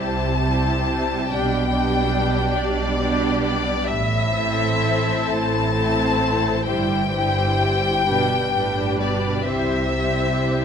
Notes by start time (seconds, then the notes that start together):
Already playing: C2 C3 G3 E4 G4 C5
0.00 A5
0.42 G3 E4 G4 C5
1.29 B1 B2 G3 D4 G4 D5 G5
1.72 G3 D4 G4 D5
2.57 B1 B2 D5
2.99 G3 D4 G4 D5
3.43 D5
3.87 A1 A2 E5
4.30 C4 E4 A4 C5
5.28 A1 A2 A5
5.74 C4 E4 A4 C5
6.65 G1 G2 G3 E4 G4 C5 G5
7.12 G3 E4 G4 C5
8.07 G1 B2 G3 D4 G4 B4
8.55 A2 G3 D4 G4 B4
9.00 B2 D5
9.46 C2 C3 G3 E4 G4 C5 E5
9.95 G3 E4 G4 C5